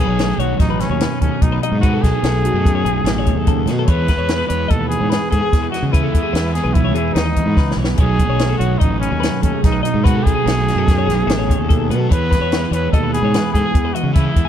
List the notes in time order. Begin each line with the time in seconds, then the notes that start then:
Already playing: B2 D#3 F#3 B3 D#4 G#4 A4
0.08 B1 C#5
0.19 A3, snare, closed hi-hat
0.29 A4
0.38 B1 D#4 F#4 C#5, closed hi-hat
0.59 A1 F#2 D#4 D#5, kick, snare, closed hi-hat
0.70 B4
0.80 C#4 D#4, snare, closed hi-hat
0.90 D#2 C#5
1.01 F#3 B4, snare, closed hi-hat
1.21 D#2 A3 C#4 A4, kick, closed hi-hat
1.32 G#4
1.42 B1 B2 D#4, kick, closed hi-hat
1.52 B4
1.61 F#3 D#4 D#5, closed hi-hat
1.72 G#2
1.80 B2 D#3 F#3 B3 D#4 F#4 B4, kick, closed hi-hat
1.84 A4
1.94 A4
2.02 B1 F#3 G#4, kick, snare, closed hi-hat
2.14 G#4
2.23 B1 A3 A4, snare, closed hi-hat
2.45 D#4 F#4, closed hi-hat
2.53 F#2 A4
2.66 F#2, kick, closed hi-hat
2.75 C#5
2.84 B1 D#4 G#4, closed hi-hat
3.04 A1 F#3 A4, snare, closed hi-hat
3.18 C#5
3.26 A3, kick, closed hi-hat
3.35 D#2 A4
3.47 C#3 A4, kick, closed hi-hat
3.66 B2 D#3 B4, snare, closed hi-hat
3.79 A4
3.84 E2 E3 G#3 C#5, closed hi-hat
3.88 B3 E4 G#4 B4 C#5, kick
4.08 E3 B4, kick, snare, closed hi-hat
4.17 E2 C#5
4.28 B3, snare, closed hi-hat
4.38 B4
4.48 E2 B4 C#5, closed hi-hat
4.68 D#2 B2 A4 D#5, kick, closed hi-hat
4.81 B4
4.88 G#4, closed hi-hat
5.01 G#2 C#5
5.10 E3 G#4 B4, snare, closed hi-hat
5.30 G#2 B3 G#4 A4, kick, closed hi-hat
5.41 G#4
5.52 E2, kick, snare, closed hi-hat
5.62 B4
5.70 E3 F#4 D#5, closed hi-hat
5.75 snare
5.83 C#3
5.87 E2 F#4
5.92 E3 G#3 B3 E4 B4, kick, closed hi-hat
5.96 G#4
6.03 A4
6.14 E2 E3, kick, closed hi-hat
6.23 G#4
6.33 E2 B3 B4, snare, closed hi-hat
6.54 B3 G#4, snare, closed hi-hat
6.64 B1 B4
6.73 B2 E4, kick, closed hi-hat
6.85 C#5
6.95 E2 B3 E4 G#4, closed hi-hat
7.13 D#2 D#4 B4, snare, closed hi-hat
7.26 D#5
7.36 B3, kick, closed hi-hat
7.46 G#2 B4
7.57 C#2 E2 B4, kick, snare
7.71 snare
7.77 B1 E3 C#5
7.84 snare
7.90 B4
7.97 B1 B2 D#3 F#3 B3 D#4 G#4 A4 C#5, kick, closed hi-hat
8.02 F#3 A3 D#4
8.19 F#3 B4, kick, closed hi-hat
8.29 B1 C#5
8.39 A3, snare, closed hi-hat
8.49 A4
8.58 B1 F#4 C#5, closed hi-hat
8.62 D#4
8.78 A1 D#4 D#5, kick, closed hi-hat
8.83 F#2
8.91 B4
9.00 C#4 D#4, closed hi-hat
9.11 D#2 C#5
9.20 F#3 B4, closed hi-hat
9.24 snare
9.42 D#2 A3 C#4 A4, kick, closed hi-hat
9.53 G#4
9.62 B1 B2 D#4, kick, snare, closed hi-hat
9.72 B4
9.83 F#3 D#4 D#5, closed hi-hat
9.94 G#2
10.04 B2 D#3 F#3 B3 D#4 F#4 A4 B4, kick, closed hi-hat
10.15 A4
10.23 B1 F#3 G#4, kick, closed hi-hat
10.35 G#4
10.46 B1 A3 A4, snare, closed hi-hat
10.68 D#4 F#4, snare, closed hi-hat
10.75 F#2 A4
10.88 F#2, kick, snare, closed hi-hat
10.98 C#5
11.07 B1 D#4 G#4, snare, closed hi-hat
11.27 A1 F#3 A4, snare, closed hi-hat
11.38 C#5
11.50 A3, kick, closed hi-hat
11.58 D#2 A4
11.69 B2 A4, kick, closed hi-hat
11.90 B2 F#3 B4, closed hi-hat
12.00 A4
12.09 E2 E3 G#3 B3 E4 G#4 B4 C#5, kick, closed hi-hat
12.31 E3 B4, kick, snare, closed hi-hat
12.40 E2 C#5
12.52 B3, snare, closed hi-hat
12.61 B4
12.71 E2 B4 C#5, closed hi-hat
12.92 D#2 B2 A4 D#5, kick, closed hi-hat
13.03 B4
13.13 G#4, closed hi-hat
13.22 G#2 C#5
13.34 E3 B4, snare, closed hi-hat
13.53 G#2 B3 G#4 A4, kick, closed hi-hat
13.66 G#4
13.74 E2, kick, closed hi-hat
13.85 B4
13.94 E3 F#4 D#5, closed hi-hat
14.03 C#3
14.13 E2 E3 G#3 B3 E4 G#4 B4, kick, closed hi-hat
14.25 A4
14.36 E2 E3, kick, closed hi-hat
14.45 G#4